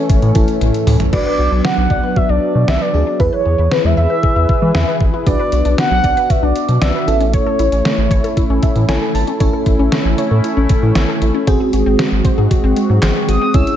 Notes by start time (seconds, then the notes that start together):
Already playing: E3 A3 C#4 E4 A4 C#5
0.09 A1, kick, closed hi-hat
0.22 A2, closed hi-hat
0.35 A1 C#4 E4 A4, kick, closed hi-hat
0.48 closed hi-hat
0.61 A1, closed hi-hat, high tom
0.74 closed hi-hat
0.87 A2, mid tom, open hi-hat
1.00 closed hi-hat, floor tom
1.13 B1 F#3 B3 D4 F#4 B4 D5, kick, crash
1.26 B4
1.39 B1 F#4
1.52 B1 D4
1.65 B3 F#5, snare
1.77 B1 F#3 F#5
1.90 B1 D5, kick
2.03 B4
2.16 F#4 E5, kick
2.29 B1 D4 D5
2.55 B2 F#3
2.68 B1 D5 E5, snare
2.81 B4 D5
2.94 D2 D4 F#4 G#4
3.07 D4
3.20 E2 E3 E4 G#4 B4 E5, kick
3.33 B4 C#5
3.45 E2 G#4
3.58 E2 E4
3.71 B3 B4, snare
3.84 E2 G#3 E5
3.97 E2 E5
4.10 B4
4.23 G#4, kick
4.36 E2 E4
4.49 kick
4.62 E3 G#3
4.75 E2 E5, snare
4.88 B4
5.01 A1, kick
5.14 E4
5.26 B1 B3 D4 F#4 B4 D5, kick, closed hi-hat
5.39 B4
5.52 B1 F#4, closed hi-hat
5.65 B1 D4, closed hi-hat
5.78 B3 F#5, snare, closed hi-hat
5.91 B1 F#3 F#5
6.04 B1 D5, kick, closed hi-hat
6.17 B4, closed hi-hat
6.30 F#4 E5, kick, closed hi-hat
6.43 B1 D4 D5
6.56 closed hi-hat
6.69 B2 F#3, closed hi-hat
6.82 B1 D5 E5, snare, closed hi-hat
6.95 B4
7.07 A1 A3 C#4 E4 A4, closed hi-hat
7.20 C#4, closed hi-hat
7.33 C#5, kick, closed hi-hat
7.46 A4
7.59 A1 E4, closed hi-hat
7.72 A1 C#4, closed hi-hat
7.85 A3, snare, closed hi-hat
7.98 A1 E3
8.11 A1 C#5, kick, closed hi-hat
8.24 A4, closed hi-hat
8.37 E4, kick, closed hi-hat
8.50 A1 C#4
8.63 E5, kick, closed hi-hat
8.76 A2 E3, closed hi-hat
8.88 A1 C#4 E4 A4 C#5 G#5, snare, closed hi-hat
9.02 A4
9.14 G#1 A5, open hi-hat
9.27 C#4, closed hi-hat
9.40 A1 A3 C#4 E4 A4 C#5, kick, closed hi-hat
9.53 A4
9.66 A1 E4, kick, closed hi-hat
9.79 A1 C#4
9.92 A3, snare, closed hi-hat
10.05 A1 E3
10.18 C#5, closed hi-hat
10.31 A2 A4
10.44 E4, closed hi-hat
10.57 A1 C#4
10.69 A3, kick, closed hi-hat
10.83 A2 E3
10.95 A1 C#5, snare, closed hi-hat
11.09 A4
11.22 A1 E4, closed hi-hat
11.34 C#4
11.47 G#1 G#3 C4 F#4 G#4 C5, kick, closed hi-hat
11.60 G#4
11.73 G#1 F#4, closed hi-hat
11.86 G#1 C4
11.99 G#3, snare, closed hi-hat
12.12 G#1 F#3
12.25 C5, kick, closed hi-hat
12.38 G#2 G#4
12.51 F#4, kick, closed hi-hat
12.64 G#1 C4
12.76 G#3, closed hi-hat
12.90 G#2 F#3
13.02 G#1 C5, snare, clap, closed hi-hat
13.16 G#4
13.28 G#1 F#4 D#6, closed hi-hat
13.41 C4
13.54 C#2 C#3 C#4 E4 G#4 C#5 E6, kick, closed hi-hat
13.67 closed hi-hat